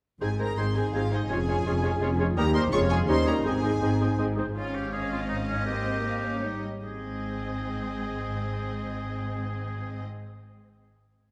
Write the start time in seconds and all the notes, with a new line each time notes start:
0.21 G#1 G#2 G#3 C4 D#4 G#4 C5 G#5 G#6
0.39 G#3 C4 D#4 G#4 A#4 C5 A#5 G#6
0.57 G#1 G#2 G#3 C4 D#4 G#4 C5 C6 G#6
0.75 G#3 C4 D#4 G#4 C5 G#5 G#6
0.93 G#1 G#2 G#3 C4 D#4 F4 G#4 C5 F5 G#6
1.12 G#3 C4 D#4 G#4 C5 D#5 G#6
1.30 F1 F2 G#3 C#4 F4 G#4 C#5 G#5 G#6
1.48 G#3 C#4 F4 G#4 C#5 G#6
1.64 F1 F2 G#3 C#4 F4 G#4 C#5 G#6
1.82 G#3 C#4 F4 G#4 C#5 G#6
2.00 F1 F2 G#3 C#4 F4 G#4 C#5 G#6
2.16 G#3 C#4 F4 G#4 C#5 G#6
2.36 D#2 G3 A#3 D#4 G4 A#4 A#5 D#6
2.53 G3 A#3 D#4 G4 A#4 C5 C6 D#6
2.72 F1 F2 G#3 C#4 F4 G#4 C#5 C#6
2.89 G#3 F4 G#4 G#5 C#6
3.06 D#2 G3 C#4 D#4 G4 C5 C#5 C6 D#6
3.25 G3 C#4 D#4 G4 A#4 C#5 A#5 D#6
3.43 G#1 G#2 G#3 C4 D#4 G#4 C5 G#5 D#6
3.62 G#3 C4 D#4 G#4 C5 D#6
3.80 G#1 G#2 G#3 C4 D#4 G#4 C5 D#6
4.00 G#3 C4 D#4 G#4 C5 D#6
4.18 G#1 G#2 G#3 C4 D#4 G#4 C5 D#6
4.35 G#3 C4 D#4 G#4 C5 D#6
4.55 G#1 G#2 C#4 F4 C#5 F5
4.75 G4
4.92 C4 G#4 D#5 F5
5.12 F4
5.29 D#4
5.48 C#4
5.65 A#3 C4 G4 D#5
6.04 A#3 C4 F5
6.23 C#4
6.42 G3 D#4 C#5 D#5
6.83 G#1 G#2 C4 G#4 D#5